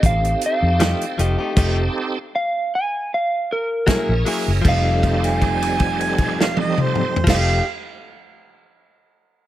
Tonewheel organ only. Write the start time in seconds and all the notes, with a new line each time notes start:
Already playing: C4 D#4 G4 A4
1.57 C4 D#4 G4 A4
3.88 C#4 E4 G#4 A#4
4.65 G3 C4 D#4 A4
7.28 C4 D#4 G4 A4